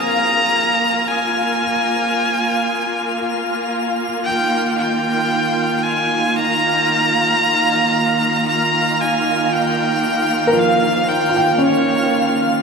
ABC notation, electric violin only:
X:1
M:4/4
L:1/16
Q:1/4=57
K:Ebmix
V:1 name="Electric violin"
b4 a8- a2 z2 | g2 g4 a2 b8 | b2 a2 g4 f2 g2 d3 z |]